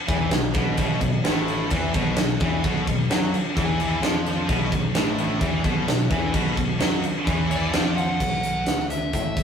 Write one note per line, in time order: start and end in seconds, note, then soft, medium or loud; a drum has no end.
0.08 0.30 E2 medium
0.08 0.31 E3 medium
0.08 kick loud
0.08 crash medium
0.31 0.53 B1 medium
0.31 0.51 B2 medium
0.31 snare loud
0.31 crash medium
0.54 0.76 B1 loud
0.54 0.78 B2 loud
0.54 kick loud
0.54 crash medium
0.77 0.99 B1 medium
0.77 1.01 B2 loud
0.77 kick loud
0.77 crash medium
1.01 1.23 B1 medium
1.01 1.20 B2 medium
1.01 kick medium
1.01 crash medium
1.24 1.67 A1 medium
1.24 1.70 A2 loud
1.24 snare loud
1.24 crash medium
1.48 crash medium
1.70 1.92 E2 loud
1.70 1.94 E3 loud
1.70 kick loud
1.70 crash medium
1.94 2.16 B1 medium
1.94 2.17 B2 medium
1.94 kick loud
1.94 crash medium
2.16 2.38 B1 medium
2.16 2.36 B2 medium
2.16 snare loud
2.16 crash medium
2.40 2.62 E2 medium
2.40 2.64 E3 loud
2.40 kick loud
2.40 crash medium
2.64 2.85 B1 medium
2.64 2.86 B2 loud
2.64 kick loud
2.64 crash medium
2.87 3.09 B1 medium
2.87 3.06 B2 medium
2.87 kick medium
2.87 crash medium
3.10 3.31 F#2 medium
3.10 3.33 F#3 loud
3.10 snare loud
3.10 crash medium
3.34 crash medium
3.57 3.99 E2 loud
3.57 4.02 E3 medium
3.57 kick loud
3.57 crash medium
3.80 crash medium
4.02 4.45 F2 medium
4.02 4.49 F3 loud
4.02 snare loud
4.02 crash medium
4.26 crash medium
4.49 4.70 B1 loud
4.49 4.72 B2 loud
4.49 kick loud
4.49 crash medium
4.72 4.93 B1 medium
4.72 4.91 B2 medium
4.72 kick medium
4.72 crash medium
4.95 5.39 A1 loud
4.95 5.42 A2 loud
4.95 snare loud
4.95 crash medium
5.18 crash medium
5.41 5.63 E2 medium
5.41 5.64 E3 medium
5.41 kick loud
5.41 crash medium
5.64 5.86 B1 medium
5.64 5.87 B2 loud
5.64 kick loud
5.64 crash medium
5.88 6.09 B1 medium
5.88 6.06 B2 medium
5.88 snare loud
5.88 crash medium
6.11 6.32 E2 loud
6.11 6.34 E3 loud
6.11 kick loud
6.11 crash medium
6.34 6.56 B1 loud
6.34 6.57 B2 loud
6.34 kick loud
6.34 crash medium
6.57 6.79 B1 medium
6.57 6.76 B2 medium
6.57 kick medium
6.57 crash medium
6.80 7.02 F#2 medium
6.80 7.03 F#3 loud
6.80 snare loud
6.80 crash medium
7.04 crash medium
7.25 7.70 E2 medium
7.25 7.72 E3 medium
7.25 kick loud
7.25 crash medium
7.51 7.94 D5 loud
7.51 crash medium
7.73 8.17 F2 medium
7.73 8.19 F3 loud
7.73 snare loud
7.73 crash medium
7.97 8.86 F#5 loud
7.97 crash medium
8.20 8.42 B1 medium
8.20 kick loud
8.20 crash medium
8.43 8.66 B1 medium
8.43 closed hi-hat medium
8.66 9.11 D2 medium
8.66 snare loud
8.66 closed hi-hat medium
8.79 snare soft
8.90 9.43 E5 medium
8.90 closed hi-hat medium
9.13 9.35 A2 medium
9.13 kick medium
9.13 closed hi-hat medium
9.37 9.43 B1 medium
9.37 kick loud
9.37 closed hi-hat medium